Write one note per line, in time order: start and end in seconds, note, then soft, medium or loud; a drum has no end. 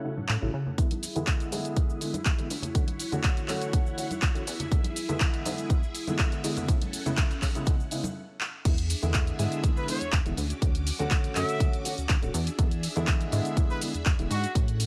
0.00 0.11 C#3 medium
0.00 0.11 F#3 medium
0.00 0.76 C#4 medium
0.00 0.76 A4 medium
0.00 0.76 F#5 medium
0.04 0.11 A3 medium
0.04 0.11 E4 medium
0.17 0.27 A2 soft
0.17 high conga medium
0.17 shaker medium
0.29 0.37 A2 medium
0.29 clap loud
0.41 0.49 A1 medium
0.41 0.48 C#3 medium
0.41 0.48 F#3 medium
0.41 0.48 A3 medium
0.41 0.48 E4 medium
0.54 0.69 C#3 medium
0.66 low conga medium
0.66 shaker medium
0.78 1.08 E2 loud
0.78 0.85 D3 medium
0.78 0.85 G#3 medium
0.78 0.85 B3 medium
0.78 6.64 E4 medium
0.78 0.85 E4 medium
0.78 2.49 G#4 medium
0.78 2.49 E5 medium
0.78 kick loud
0.78 closed hi-hat medium
0.78 shaker soft
0.91 closed hi-hat medium
0.91 high conga medium
0.91 shaker soft
1.03 open hi-hat loud
1.03 shaker medium
1.15 1.45 E2 medium
1.15 1.49 D3 medium
1.15 1.49 G#3 medium
1.15 1.49 B3 medium
1.15 1.49 E4 loud
1.15 closed hi-hat soft
1.15 low conga medium
1.15 shaker medium
1.15 shaker soft
1.27 kick loud
1.27 clap loud
1.27 closed hi-hat medium
1.27 shaker soft
1.40 closed hi-hat soft
1.40 shaker soft
1.51 1.60 G#2 medium
1.51 1.98 D3 medium
1.51 1.98 G#3 medium
1.51 1.98 B3 medium
1.51 1.99 E4 medium
1.51 open hi-hat medium
1.51 high conga medium
1.51 shaker medium
1.64 closed hi-hat soft
1.64 shaker medium
1.64 shaker soft
1.76 1.84 E2 medium
1.76 kick loud
1.76 closed hi-hat medium
1.76 shaker soft
1.90 shaker soft
2.01 2.08 D3 medium
2.01 2.08 G#3 medium
2.01 2.08 B3 medium
2.01 2.08 E4 medium
2.01 open hi-hat loud
2.01 shaker medium
2.14 closed hi-hat soft
2.14 high conga medium
2.14 shaker medium
2.14 shaker soft
2.25 2.34 E2 medium
2.25 kick loud
2.25 clap loud
2.25 closed hi-hat medium
2.25 shaker soft
2.38 2.46 E1 medium
2.38 2.45 D3 medium
2.38 2.45 G#3 medium
2.38 2.45 B3 medium
2.38 2.45 E4 medium
2.38 closed hi-hat soft
2.38 shaker soft
2.50 2.66 D2 medium
2.50 4.45 C#5 medium
2.50 4.45 F#5 medium
2.50 open hi-hat medium
2.50 shaker medium
2.62 closed hi-hat medium
2.62 low conga medium
2.62 shaker medium
2.62 shaker soft
2.74 3.04 D2 loud
2.74 2.82 D3 medium
2.74 2.82 A3 medium
2.74 2.82 C#4 medium
2.74 2.82 F#4 medium
2.74 kick loud
2.74 closed hi-hat medium
2.74 shaker soft
2.87 closed hi-hat medium
2.87 high conga medium
2.87 shaker soft
3.00 open hi-hat loud
3.00 shaker medium
3.11 3.42 D2 medium
3.11 3.46 D3 medium
3.11 3.46 A3 medium
3.11 3.46 C#4 medium
3.11 3.46 F#4 loud
3.11 closed hi-hat soft
3.11 low conga medium
3.11 shaker medium
3.11 shaker soft
3.24 kick loud
3.24 clap loud
3.24 closed hi-hat medium
3.24 shaker soft
3.37 closed hi-hat soft
3.37 shaker soft
3.48 3.57 F#2 medium
3.48 3.95 D3 medium
3.48 3.95 A3 medium
3.48 3.95 C#4 medium
3.48 3.95 F#4 loud
3.48 clap medium
3.48 open hi-hat medium
3.48 high conga medium
3.48 shaker medium
3.61 closed hi-hat soft
3.61 shaker medium
3.61 shaker soft
3.73 3.81 D2 medium
3.73 kick loud
3.73 closed hi-hat medium
3.73 shaker soft
3.86 shaker soft
3.97 4.04 D3 medium
3.97 4.05 A3 medium
3.97 4.05 C#4 medium
3.97 4.05 F#4 medium
3.97 open hi-hat loud
3.97 shaker medium
4.10 closed hi-hat soft
4.10 high conga medium
4.10 shaker medium
4.10 shaker soft
4.22 4.30 D2 medium
4.22 kick loud
4.22 clap loud
4.22 closed hi-hat medium
4.22 shaker soft
4.34 4.43 D1 medium
4.34 4.41 D3 medium
4.34 4.41 A3 medium
4.34 4.42 C#4 medium
4.34 4.42 F#4 medium
4.34 closed hi-hat soft
4.34 shaker soft
4.47 4.63 E2 loud
4.47 6.66 G#4 medium
4.47 6.66 E5 medium
4.47 open hi-hat medium
4.47 shaker medium
4.60 closed hi-hat medium
4.60 low conga medium
4.60 shaker medium
4.60 shaker soft
4.71 5.01 E2 loud
4.71 4.78 D3 medium
4.71 4.78 G#3 medium
4.71 4.78 B3 medium
4.71 4.79 E4 medium
4.71 kick loud
4.71 closed hi-hat medium
4.71 shaker soft
4.84 closed hi-hat soft
4.84 high conga medium
4.84 shaker soft
4.96 open hi-hat loud
4.96 shaker medium
5.08 5.38 E2 medium
5.08 5.42 D3 medium
5.08 5.42 G#3 medium
5.08 5.43 B3 medium
5.08 5.43 E4 medium
5.08 closed hi-hat soft
5.08 low conga medium
5.08 shaker medium
5.08 shaker soft
5.20 kick loud
5.20 clap loud
5.20 closed hi-hat medium
5.20 shaker soft
5.34 closed hi-hat soft
5.34 shaker soft
5.45 5.53 G#2 medium
5.45 5.68 D3 medium
5.45 5.68 G#3 medium
5.45 5.68 B3 medium
5.45 5.68 E4 medium
5.45 open hi-hat medium
5.45 high conga medium
5.45 shaker medium
5.58 closed hi-hat soft
5.58 shaker medium
5.58 shaker soft
5.70 5.78 E2 medium
5.70 5.77 D3 medium
5.70 5.77 G#3 medium
5.70 5.77 B3 medium
5.70 5.77 E4 medium
5.70 kick loud
5.70 closed hi-hat medium
5.70 shaker medium
5.70 shaker soft
5.83 shaker soft
5.95 open hi-hat loud
5.95 shaker medium
6.07 6.41 D3 medium
6.07 6.41 G#3 medium
6.07 6.41 B3 medium
6.07 6.41 E4 loud
6.07 closed hi-hat soft
6.07 high conga loud
6.07 shaker medium
6.07 shaker soft
6.19 6.27 E2 medium
6.19 kick loud
6.19 clap loud
6.19 closed hi-hat medium
6.19 shaker soft
6.32 6.39 E1 medium
6.32 closed hi-hat soft
6.32 shaker soft
6.43 6.59 G#2 medium
6.43 6.66 D3 medium
6.43 6.66 G#3 medium
6.43 6.67 B3 medium
6.43 6.67 E4 loud
6.43 open hi-hat loud
6.43 shaker medium
6.57 closed hi-hat medium
6.57 low conga medium
6.57 shaker medium
6.57 shaker soft
6.68 6.98 A2 loud
6.68 6.75 C#3 medium
6.68 6.75 G#3 medium
6.68 6.75 B3 medium
6.68 8.15 C#4 medium
6.68 6.76 E4 medium
6.68 8.15 A4 medium
6.68 8.15 F#5 loud
6.68 kick loud
6.68 closed hi-hat medium
6.68 shaker soft
6.68 shaker medium
6.82 closed hi-hat soft
6.82 high conga medium
6.82 shaker soft
6.93 open hi-hat loud
6.93 shaker medium
7.05 7.35 A2 medium
7.05 7.16 C#3 medium
7.05 7.16 G#3 medium
7.05 7.16 B3 medium
7.05 7.16 E4 loud
7.05 closed hi-hat soft
7.05 low conga medium
7.05 shaker medium
7.05 shaker soft
7.17 7.25 C#3 medium
7.17 7.25 E4 medium
7.17 kick loud
7.17 clap loud
7.17 closed hi-hat medium
7.17 shaker medium
7.17 shaker soft
7.30 closed hi-hat soft
7.30 shaker soft
7.42 7.50 C#3 medium
7.42 kick medium
7.42 clap medium
7.42 open hi-hat loud
7.42 high conga medium
7.42 shaker medium
7.55 7.65 C#3 medium
7.55 7.65 G#3 medium
7.55 7.65 B3 medium
7.55 7.65 E4 loud
7.55 closed hi-hat soft
7.55 shaker medium
7.55 shaker soft
7.66 7.75 A2 medium
7.66 7.74 C#3 medium
7.66 7.74 G#3 medium
7.66 7.74 B3 medium
7.66 7.74 E4 medium
7.66 kick loud
7.66 closed hi-hat medium
7.66 shaker medium
7.67 shaker soft
7.80 shaker soft
7.91 7.98 C#3 medium
7.91 7.98 G#3 medium
7.91 7.98 B3 medium
7.91 7.99 E4 medium
7.91 open hi-hat loud
7.91 shaker medium
8.04 closed hi-hat soft
8.04 high conga loud
8.04 shaker medium
8.04 shaker soft
8.41 clap medium
8.65 8.95 E2 loud
8.65 8.72 D3 medium
8.65 8.72 G#3 medium
8.65 8.72 B3 medium
8.65 10.36 D4 medium
8.65 8.72 E4 medium
8.65 10.36 G#4 medium
8.65 10.36 E5 loud
8.65 kick loud
8.65 closed hi-hat medium
8.65 crash loud
8.65 shaker soft
8.78 closed hi-hat medium
8.78 shaker soft
8.90 open hi-hat loud
8.90 shaker medium
9.02 9.32 E2 medium
9.02 9.36 D3 loud
9.02 9.36 G#3 medium
9.02 9.36 B3 medium
9.02 9.36 E4 loud
9.02 closed hi-hat soft
9.02 shaker soft
9.14 kick loud
9.14 clap loud
9.14 closed hi-hat medium
9.14 shaker soft
9.27 closed hi-hat soft
9.27 shaker soft
9.38 9.47 G#2 medium
9.38 9.85 D3 medium
9.38 9.85 G#3 medium
9.38 9.85 B3 medium
9.38 9.86 E4 loud
9.38 open hi-hat medium
9.38 shaker medium
9.52 closed hi-hat soft
9.52 shaker soft
9.64 9.71 E2 medium
9.64 kick loud
9.64 closed hi-hat medium
9.64 shaker soft
9.76 9.86 B4 medium
9.76 shaker soft
9.88 9.95 D3 medium
9.88 9.95 G#3 medium
9.88 9.95 B3 medium
9.88 9.95 E4 medium
9.88 10.09 C#5 medium
9.88 open hi-hat loud
9.88 shaker medium
10.01 10.10 E2 soft
10.01 closed hi-hat soft
10.01 shaker soft
10.12 10.21 E2 medium
10.12 kick loud
10.12 clap loud
10.12 closed hi-hat medium
10.12 shaker soft
10.25 10.33 E1 medium
10.25 10.32 D3 medium
10.25 10.32 G#3 medium
10.25 10.32 B3 medium
10.25 10.32 E4 medium
10.25 closed hi-hat soft
10.25 shaker soft
10.37 10.53 D2 medium
10.37 12.32 C#4 medium
10.37 12.32 F#4 medium
10.37 12.32 D6 medium
10.37 open hi-hat loud
10.37 shaker medium
10.50 closed hi-hat medium
10.50 shaker soft
10.61 10.91 D2 loud
10.61 10.69 D3 medium
10.61 10.69 A3 medium
10.61 10.69 C#4 medium
10.61 10.69 F#4 medium
10.61 kick loud
10.61 closed hi-hat medium
10.61 shaker soft
10.75 closed hi-hat medium
10.75 shaker soft
10.87 open hi-hat loud
10.87 shaker medium
10.99 11.29 D2 medium
10.99 11.33 D3 medium
10.99 11.33 A3 medium
10.99 11.33 C#4 medium
10.99 11.33 F#4 loud
10.99 closed hi-hat soft
10.99 shaker soft
11.11 kick loud
11.11 clap loud
11.11 closed hi-hat medium
11.11 shaker soft
11.24 closed hi-hat soft
11.24 shaker soft
11.35 11.44 F#2 medium
11.35 11.82 D3 loud
11.35 11.82 A3 medium
11.35 11.82 C#4 medium
11.35 11.82 F#4 loud
11.35 11.73 E5 loud
11.35 clap medium
11.35 open hi-hat loud
11.35 shaker medium
11.49 closed hi-hat soft
11.49 shaker soft
11.60 11.68 D2 medium
11.60 kick loud
11.60 closed hi-hat medium
11.60 shaker soft
11.73 closed hi-hat soft
11.73 shaker soft
11.85 11.92 D3 medium
11.85 11.92 A3 medium
11.85 11.92 C#4 medium
11.85 11.92 F#4 medium
11.85 open hi-hat loud
11.85 shaker medium
11.98 12.07 D2 soft
11.98 closed hi-hat soft
11.98 shaker soft
12.09 12.17 D2 medium
12.09 kick loud
12.09 clap loud
12.09 closed hi-hat medium
12.09 shaker soft
12.22 12.29 D1 medium
12.22 12.29 D3 medium
12.22 12.29 A3 medium
12.22 12.29 C#4 medium
12.22 12.29 F#4 medium
12.22 closed hi-hat soft
12.22 shaker soft
12.34 12.49 E2 loud
12.34 14.53 D4 medium
12.34 14.53 G#4 medium
12.34 14.53 E5 medium
12.34 open hi-hat loud
12.34 shaker medium
12.47 closed hi-hat medium
12.47 shaker soft
12.58 12.88 E2 loud
12.58 12.65 D3 medium
12.58 12.65 G#3 medium
12.58 12.66 B3 medium
12.58 12.66 E4 medium
12.58 kick loud
12.58 closed hi-hat medium
12.58 shaker soft
12.71 closed hi-hat medium
12.71 shaker soft
12.83 open hi-hat loud
12.83 shaker medium
12.96 13.25 E2 medium
12.96 13.29 D3 medium
12.96 13.30 G#3 medium
12.96 13.30 B3 medium
12.96 13.30 E4 loud
12.96 closed hi-hat soft
12.96 shaker soft
13.07 kick loud
13.07 clap loud
13.07 closed hi-hat medium
13.07 shaker soft
13.21 closed hi-hat soft
13.21 shaker soft
13.32 13.40 G#2 medium
13.32 13.78 D3 medium
13.32 13.79 G#3 medium
13.32 13.79 B3 medium
13.32 13.79 E4 loud
13.32 open hi-hat loud
13.32 shaker medium
13.45 closed hi-hat soft
13.45 shaker soft
13.57 13.65 E2 loud
13.57 kick loud
13.57 closed hi-hat medium
13.57 shaker soft
13.70 13.79 B4 medium
13.70 shaker soft
13.81 13.88 D3 medium
13.81 13.88 G#3 medium
13.81 13.88 B3 medium
13.81 13.89 E4 medium
13.81 open hi-hat loud
13.81 shaker medium
13.94 14.04 E2 soft
13.94 closed hi-hat soft
13.94 shaker soft
14.06 14.14 E2 medium
14.06 kick loud
14.06 clap loud
14.06 closed hi-hat medium
14.06 shaker soft
14.18 14.26 E1 medium
14.18 14.25 D3 medium
14.18 14.25 G#3 medium
14.18 14.25 B3 medium
14.18 14.26 E4 medium
14.18 closed hi-hat soft
14.18 shaker soft
14.31 14.46 G#2 medium
14.31 14.52 F#4 medium
14.31 open hi-hat loud
14.31 shaker medium
14.44 closed hi-hat medium
14.44 shaker soft
14.55 14.85 A2 loud
14.55 14.62 E3 medium
14.55 14.62 A3 medium
14.55 14.86 A3 medium
14.55 14.86 C#4 medium
14.55 14.62 C#4 medium
14.55 14.63 F#4 medium
14.55 14.86 F#5 medium
14.55 kick loud
14.55 closed hi-hat medium
14.55 shaker soft
14.68 closed hi-hat soft
14.68 shaker soft
14.80 open hi-hat loud
14.80 shaker medium